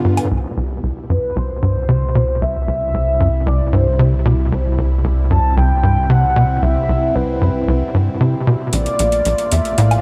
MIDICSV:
0, 0, Header, 1, 6, 480
1, 0, Start_track
1, 0, Key_signature, 0, "major"
1, 0, Tempo, 526316
1, 280, Time_signature, 4, 2, 24, 8
1, 9134, End_track
2, 0, Start_track
2, 0, Title_t, "Soft synth lead"
2, 0, Program_c, 0, 80
2, 1007, Note_on_c, 0, 71, 82
2, 1244, Note_on_c, 0, 72, 103
2, 1257, Note_off_c, 0, 71, 0
2, 2204, Note_on_c, 0, 76, 127
2, 2218, Note_off_c, 0, 72, 0
2, 3160, Note_on_c, 0, 74, 105
2, 3174, Note_off_c, 0, 76, 0
2, 3394, Note_off_c, 0, 74, 0
2, 3399, Note_on_c, 0, 72, 88
2, 3846, Note_off_c, 0, 72, 0
2, 4839, Note_on_c, 0, 81, 100
2, 5063, Note_off_c, 0, 81, 0
2, 5080, Note_on_c, 0, 79, 108
2, 5557, Note_on_c, 0, 78, 102
2, 5571, Note_off_c, 0, 79, 0
2, 6042, Note_on_c, 0, 76, 109
2, 6055, Note_off_c, 0, 78, 0
2, 6522, Note_on_c, 0, 71, 88
2, 6536, Note_off_c, 0, 76, 0
2, 7481, Note_off_c, 0, 71, 0
2, 7959, Note_on_c, 0, 74, 99
2, 8680, Note_on_c, 0, 76, 86
2, 8694, Note_off_c, 0, 74, 0
2, 8914, Note_on_c, 0, 77, 102
2, 8927, Note_off_c, 0, 76, 0
2, 9134, Note_off_c, 0, 77, 0
2, 9134, End_track
3, 0, Start_track
3, 0, Title_t, "Analog synth pad"
3, 0, Program_c, 1, 89
3, 0, Note_on_c, 1, 43, 74
3, 0, Note_on_c, 1, 50, 76
3, 0, Note_on_c, 1, 59, 73
3, 0, Note_on_c, 1, 65, 84
3, 244, Note_off_c, 1, 65, 0
3, 262, Note_off_c, 1, 50, 0
3, 262, Note_off_c, 1, 59, 0
3, 264, Note_off_c, 1, 43, 0
3, 281, Note_on_c, 1, 55, 71
3, 281, Note_on_c, 1, 64, 85
3, 282, Note_on_c, 1, 47, 73
3, 283, Note_on_c, 1, 48, 76
3, 4085, Note_off_c, 1, 47, 0
3, 4121, Note_on_c, 1, 60, 71
3, 7924, Note_off_c, 1, 55, 0
3, 7924, Note_off_c, 1, 60, 0
3, 7924, Note_off_c, 1, 64, 0
3, 7925, Note_off_c, 1, 48, 0
3, 7961, Note_on_c, 1, 58, 84
3, 7962, Note_on_c, 1, 57, 70
3, 7962, Note_on_c, 1, 65, 74
3, 7963, Note_on_c, 1, 74, 87
3, 9134, Note_off_c, 1, 57, 0
3, 9134, Note_off_c, 1, 58, 0
3, 9134, Note_off_c, 1, 65, 0
3, 9134, Note_off_c, 1, 74, 0
3, 9134, End_track
4, 0, Start_track
4, 0, Title_t, "Analog synth bass"
4, 0, Program_c, 2, 38
4, 41, Note_on_c, 2, 43, 76
4, 179, Note_off_c, 2, 43, 0
4, 282, Note_on_c, 2, 36, 75
4, 419, Note_off_c, 2, 36, 0
4, 518, Note_on_c, 2, 36, 76
4, 726, Note_off_c, 2, 36, 0
4, 758, Note_on_c, 2, 36, 73
4, 842, Note_off_c, 2, 36, 0
4, 1000, Note_on_c, 2, 42, 76
4, 1083, Note_off_c, 2, 42, 0
4, 1241, Note_on_c, 2, 36, 97
4, 1378, Note_off_c, 2, 36, 0
4, 1480, Note_on_c, 2, 43, 76
4, 1618, Note_off_c, 2, 43, 0
4, 1720, Note_on_c, 2, 48, 79
4, 1858, Note_off_c, 2, 48, 0
4, 1962, Note_on_c, 2, 47, 76
4, 2044, Note_off_c, 2, 47, 0
4, 2203, Note_on_c, 2, 36, 78
4, 2339, Note_off_c, 2, 36, 0
4, 2441, Note_on_c, 2, 36, 71
4, 2647, Note_off_c, 2, 36, 0
4, 2682, Note_on_c, 2, 36, 76
4, 2764, Note_off_c, 2, 36, 0
4, 2919, Note_on_c, 2, 42, 73
4, 3002, Note_off_c, 2, 42, 0
4, 3158, Note_on_c, 2, 36, 99
4, 3297, Note_off_c, 2, 36, 0
4, 3399, Note_on_c, 2, 43, 79
4, 3537, Note_off_c, 2, 43, 0
4, 3640, Note_on_c, 2, 48, 80
4, 3778, Note_off_c, 2, 48, 0
4, 3879, Note_on_c, 2, 47, 79
4, 3962, Note_off_c, 2, 47, 0
4, 4120, Note_on_c, 2, 36, 78
4, 4258, Note_off_c, 2, 36, 0
4, 4358, Note_on_c, 2, 36, 73
4, 4566, Note_off_c, 2, 36, 0
4, 4596, Note_on_c, 2, 36, 79
4, 4681, Note_off_c, 2, 36, 0
4, 4837, Note_on_c, 2, 42, 75
4, 4921, Note_off_c, 2, 42, 0
4, 5078, Note_on_c, 2, 36, 98
4, 5217, Note_off_c, 2, 36, 0
4, 5318, Note_on_c, 2, 43, 77
4, 5457, Note_off_c, 2, 43, 0
4, 5560, Note_on_c, 2, 48, 74
4, 5698, Note_off_c, 2, 48, 0
4, 5801, Note_on_c, 2, 47, 77
4, 5883, Note_off_c, 2, 47, 0
4, 6039, Note_on_c, 2, 36, 82
4, 6178, Note_off_c, 2, 36, 0
4, 6280, Note_on_c, 2, 36, 74
4, 6487, Note_off_c, 2, 36, 0
4, 6520, Note_on_c, 2, 36, 72
4, 6603, Note_off_c, 2, 36, 0
4, 6760, Note_on_c, 2, 42, 75
4, 6843, Note_off_c, 2, 42, 0
4, 7002, Note_on_c, 2, 36, 95
4, 7139, Note_off_c, 2, 36, 0
4, 7245, Note_on_c, 2, 43, 77
4, 7380, Note_off_c, 2, 43, 0
4, 7483, Note_on_c, 2, 48, 74
4, 7619, Note_off_c, 2, 48, 0
4, 7725, Note_on_c, 2, 47, 79
4, 7805, Note_off_c, 2, 47, 0
4, 7960, Note_on_c, 2, 34, 81
4, 8098, Note_off_c, 2, 34, 0
4, 8203, Note_on_c, 2, 34, 75
4, 8408, Note_off_c, 2, 34, 0
4, 8442, Note_on_c, 2, 34, 71
4, 8524, Note_off_c, 2, 34, 0
4, 8682, Note_on_c, 2, 40, 77
4, 8764, Note_off_c, 2, 40, 0
4, 8919, Note_on_c, 2, 45, 101
4, 9126, Note_off_c, 2, 45, 0
4, 9134, End_track
5, 0, Start_track
5, 0, Title_t, "Analog synth bass"
5, 0, Program_c, 3, 38
5, 278, Note_on_c, 3, 36, 90
5, 7935, Note_off_c, 3, 36, 0
5, 7959, Note_on_c, 3, 34, 91
5, 9134, Note_off_c, 3, 34, 0
5, 9134, End_track
6, 0, Start_track
6, 0, Title_t, "Drums"
6, 159, Note_on_c, 9, 42, 47
6, 159, Note_on_c, 9, 77, 64
6, 250, Note_off_c, 9, 42, 0
6, 250, Note_off_c, 9, 77, 0
6, 7959, Note_on_c, 9, 42, 65
6, 8051, Note_off_c, 9, 42, 0
6, 8081, Note_on_c, 9, 42, 39
6, 8172, Note_off_c, 9, 42, 0
6, 8201, Note_on_c, 9, 42, 84
6, 8292, Note_off_c, 9, 42, 0
6, 8319, Note_on_c, 9, 42, 40
6, 8410, Note_off_c, 9, 42, 0
6, 8439, Note_on_c, 9, 42, 63
6, 8530, Note_off_c, 9, 42, 0
6, 8558, Note_on_c, 9, 42, 40
6, 8649, Note_off_c, 9, 42, 0
6, 8678, Note_on_c, 9, 42, 85
6, 8769, Note_off_c, 9, 42, 0
6, 8802, Note_on_c, 9, 42, 39
6, 8893, Note_off_c, 9, 42, 0
6, 8918, Note_on_c, 9, 42, 65
6, 9009, Note_off_c, 9, 42, 0
6, 9039, Note_on_c, 9, 42, 40
6, 9039, Note_on_c, 9, 77, 77
6, 9130, Note_off_c, 9, 42, 0
6, 9130, Note_off_c, 9, 77, 0
6, 9134, End_track
0, 0, End_of_file